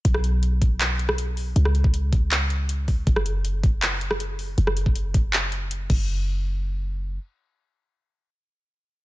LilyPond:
<<
  \new Staff \with { instrumentName = "808-style bass" } { \clef bass \time 4/4 \key b \lydian \tempo 4 = 159 b,,1 | cis,1 | fis,,1 | fis,,2.~ fis,,8 fis,,8~ |
fis,,2. r4 | r1 | }
  \new DrumStaff \with { instrumentName = "Drums" } \drummode { \time 4/4 <hh bd>16 ss16 hh8 hh8 <hh bd>8 <hc hh>8 hh16 ss16 hh8 hho8 | hh16 ss16 hh16 bd16 hh8 <hh bd>8 <hc hh>8 hh8 hh8 <hho bd>8 | <hh bd>16 ss16 hh8 hh8 <hh bd>8 <hc hh>8 hh16 ss16 hh8 hho8 | hh16 ss16 hh16 bd16 hh8 <hh bd>8 <hc hh>8 hh8 hh8 <cymc bd>8 |
r4 r4 r4 r4 | r4 r4 r4 r4 | }
>>